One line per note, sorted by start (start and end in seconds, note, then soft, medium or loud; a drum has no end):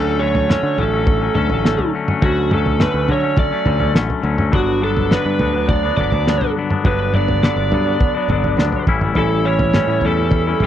0.00 0.54 D2 medium
0.00 0.20 D3 medium
0.00 0.21 F#3 medium
0.00 0.21 A3 medium
0.00 0.23 C#4 loud
0.00 0.21 A4 medium
0.20 0.48 D3 medium
0.20 0.50 F#3 medium
0.20 0.51 A3 medium
0.20 0.52 C#4 medium
0.20 0.79 C#5 medium
0.35 floor tom medium
0.49 0.78 D3 medium
0.49 0.65 F#3 medium
0.49 0.64 A3 medium
0.49 0.63 C#4 loud
0.49 snare medium
0.49 mid tom medium
0.63 0.76 D3 medium
0.63 0.79 F#3 soft
0.63 0.80 A3 medium
0.63 0.81 C#4 medium
0.78 1.28 A1 medium
0.78 1.21 D3 medium
0.78 0.96 F#3 medium
0.78 0.94 A3 medium
0.78 0.92 C#4 medium
0.78 1.34 A4 medium
0.78 floor tom medium
0.94 1.24 F#3 medium
0.94 1.22 A3 medium
0.94 1.20 C#4 medium
1.07 kick medium
1.07 floor tom medium
1.22 1.36 F#3 medium
1.22 1.36 A3 medium
1.22 1.37 C#4 medium
1.35 1.48 D2 medium
1.35 1.62 D3 medium
1.35 1.53 F#3 medium
1.35 1.51 A3 medium
1.35 1.49 C#4 medium
1.35 1.89 A4 medium
1.35 floor tom medium
1.35 mid tom medium
1.50 1.75 A1 medium
1.50 1.64 F#3 soft
1.50 1.65 A3 soft
1.50 1.65 C#4 medium
1.50 floor tom medium
1.64 1.92 D3 medium
1.64 1.94 F#3 medium
1.64 1.94 A3 medium
1.64 1.95 C#4 medium
1.64 snare medium
1.79 floor tom medium
1.94 2.21 D3 medium
1.94 2.10 F#3 medium
1.94 2.09 A3 medium
1.94 2.07 C#4 medium
2.08 2.23 F#3 medium
2.08 2.24 A3 medium
2.08 2.24 C#4 medium
2.08 mid tom medium
2.22 2.85 D2 medium
2.22 2.50 D3 medium
2.22 2.52 F#3 medium
2.22 2.53 A3 medium
2.22 2.53 C#4 medium
2.22 2.50 F#4 medium
2.22 kick loud
2.22 floor tom medium
2.51 2.78 D3 medium
2.51 2.80 F#3 medium
2.51 2.80 A3 medium
2.51 2.80 C#4 medium
2.51 2.82 A4 medium
2.51 mid tom medium
2.66 floor tom medium
2.79 3.07 D3 medium
2.79 2.96 F#3 medium
2.79 2.94 A3 medium
2.79 2.93 C#4 medium
2.79 3.10 B4 medium
2.79 snare medium
2.79 mid tom medium
2.94 3.07 D2 medium
2.94 3.09 F#3 medium
2.94 3.09 A3 medium
2.94 3.10 C#4 medium
3.08 3.52 D3 medium
3.08 3.34 D3 medium
3.08 3.25 F#3 medium
3.08 3.23 A3 medium
3.08 3.22 C#4 medium
3.08 3.38 C#5 medium
3.08 floor tom medium
3.23 3.53 F#3 medium
3.23 3.51 A3 medium
3.23 3.50 C#4 medium
3.37 3.92 D5 medium
3.37 kick loud
3.37 floor tom medium
3.51 3.66 F#3 medium
3.51 3.66 A3 medium
3.51 3.67 C#4 medium
3.66 3.91 D2 medium
3.66 3.93 D3 medium
3.66 3.82 F#3 medium
3.66 3.80 A3 medium
3.66 3.79 C#4 medium
3.66 floor tom medium
3.66 mid tom medium
3.80 3.95 F#3 soft
3.80 3.95 A3 medium
3.80 3.95 C#4 medium
3.80 floor tom medium
3.94 4.07 A1 medium
3.94 4.21 D3 medium
3.94 4.23 F#3 medium
3.94 4.23 A3 medium
3.94 4.24 C#4 medium
3.94 snare medium
4.10 floor tom medium
4.22 4.49 D2 medium
4.22 4.50 D3 medium
4.22 4.40 F#3 medium
4.22 4.38 A3 medium
4.22 4.37 C#4 medium
4.38 4.52 F#3 medium
4.38 4.52 A3 medium
4.38 4.51 C#4 medium
4.38 mid tom medium
4.51 5.16 G1 medium
4.51 5.10 G2 medium
4.51 4.81 D3 medium
4.51 4.82 F#3 medium
4.51 4.83 B3 medium
4.51 4.83 D4 loud
4.51 kick medium
4.51 floor tom medium
4.55 4.84 F#4 medium
4.82 5.09 D3 medium
4.82 5.12 F#3 medium
4.82 5.12 B3 medium
4.82 5.12 D4 medium
4.82 5.13 A4 medium
4.97 floor tom medium
5.10 5.54 G2 medium
5.10 5.38 D3 medium
5.10 5.26 F#3 medium
5.10 5.25 B3 medium
5.10 5.24 D4 medium
5.10 5.69 B4 medium
5.10 snare medium
5.10 mid tom medium
5.25 5.38 G2 medium
5.25 5.39 F#3 medium
5.25 5.40 B3 medium
5.25 5.41 D4 medium
5.39 5.90 D2 medium
5.39 5.83 D3 medium
5.39 5.55 F#3 medium
5.39 5.54 B3 medium
5.39 5.53 D4 medium
5.39 floor tom medium
5.54 5.84 F#3 medium
5.54 5.84 B3 medium
5.54 5.82 D4 medium
5.69 5.96 D5 medium
5.69 kick medium
5.69 floor tom medium
5.83 5.98 F#3 medium
5.83 5.99 B3 medium
5.83 5.99 D4 medium
5.97 6.11 G1 medium
5.97 6.26 D3 medium
5.97 6.14 F#3 medium
5.97 6.13 B3 medium
5.97 6.11 D4 medium
5.97 6.51 D5 medium
5.97 floor tom medium
5.97 mid tom medium
6.12 6.38 D2 medium
6.12 6.27 F#3 soft
6.12 6.28 B3 medium
6.12 6.28 D4 medium
6.12 floor tom medium
6.27 6.83 G2 medium
6.27 6.55 D3 medium
6.27 6.56 F#3 medium
6.27 6.57 B3 medium
6.27 6.58 D4 medium
6.27 snare medium
6.41 floor tom medium
6.56 6.84 D3 medium
6.56 6.72 F#3 medium
6.56 6.71 B3 medium
6.56 6.70 D4 medium
6.70 6.84 F#3 medium
6.70 6.85 B3 medium
6.70 6.86 D4 medium
6.70 mid tom medium
6.84 7.48 G1 medium
6.84 7.41 G2 medium
6.84 7.11 D3 medium
6.84 7.13 F#3 medium
6.84 7.14 B3 medium
6.84 7.15 D4 loud
6.84 7.15 B4 medium
6.84 kick loud
6.84 floor tom medium
7.13 7.42 D3 medium
7.13 7.43 F#3 medium
7.13 7.43 B3 medium
7.13 7.44 D4 medium
7.13 7.42 D5 medium
7.13 mid tom medium
7.29 floor tom medium
7.42 7.86 G2 medium
7.42 7.71 D3 medium
7.42 7.58 F#3 medium
7.42 7.57 B3 medium
7.42 7.56 D4 medium
7.42 8.84 D5 medium
7.42 snare medium
7.42 mid tom medium
7.56 7.69 G1 medium
7.56 7.71 F#3 medium
7.56 7.73 B3 medium
7.56 7.73 D4 medium
7.71 7.96 G2 medium
7.71 8.15 D3 medium
7.71 7.87 F#3 medium
7.71 7.86 B3 medium
7.71 7.85 D4 medium
7.71 floor tom medium
7.86 8.16 F#3 medium
7.86 8.16 B3 medium
7.86 8.13 D4 medium
8.01 kick medium
8.01 floor tom medium
8.15 8.30 F#3 soft
8.15 8.31 B3 medium
8.15 8.31 D4 medium
8.28 8.54 G1 medium
8.28 8.57 D3 medium
8.28 8.45 F#3 medium
8.28 8.44 B3 medium
8.28 8.43 D4 medium
8.28 floor tom medium
8.28 mid tom medium
8.44 8.58 F#3 soft
8.44 8.58 B3 soft
8.44 8.59 D4 medium
8.44 floor tom medium
8.57 8.70 D2 medium
8.57 8.85 G2 medium
8.57 8.85 D3 medium
8.57 8.86 F#3 medium
8.57 8.86 B3 medium
8.57 8.86 D4 medium
8.57 snare medium
8.72 floor tom medium
8.87 9.12 A1 medium
8.87 9.16 A2 medium
8.87 9.16 E3 medium
8.87 9.04 G3 medium
8.87 9.03 C#4 medium
8.87 9.02 E4 medium
8.87 kick medium
9.01 9.17 G3 medium
9.01 9.18 C#4 medium
9.01 9.18 E4 medium
9.01 mid tom medium
9.15 9.79 A1 medium
9.15 9.74 A2 medium
9.15 9.44 E3 medium
9.15 9.45 G3 medium
9.15 9.46 C#4 loud
9.15 9.47 E4 medium
9.15 9.46 A4 medium
9.15 floor tom medium
9.44 9.74 E3 medium
9.44 9.75 G3 medium
9.44 9.75 C#4 medium
9.44 9.76 E4 medium
9.44 10.05 C#5 medium
9.59 floor tom medium
9.74 10.24 A2 medium
9.74 10.03 E3 medium
9.74 9.91 G3 medium
9.74 9.89 C#4 medium
9.74 9.88 E4 medium
9.74 snare medium
9.74 mid tom medium
9.87 10.00 A2 medium
9.87 10.04 G3 soft
9.87 10.05 C#4 medium
9.87 10.06 E4 medium
10.01 10.53 E2 medium
10.01 10.61 E3 medium
10.01 10.20 G3 medium
10.01 floor tom medium
10.06 10.19 C#4 medium
10.06 10.18 E4 medium
10.06 10.63 A4 medium
10.18 10.49 G3 medium
10.18 10.48 C#4 medium
10.18 10.47 E4 medium
10.31 kick medium
10.31 floor tom medium
10.47 10.61 G3 soft
10.47 10.64 C#4 medium
10.47 10.64 E4 medium
10.60 10.67 A1 medium
10.60 10.67 E3 medium
10.60 10.67 G3 medium
10.60 floor tom medium
10.60 mid tom medium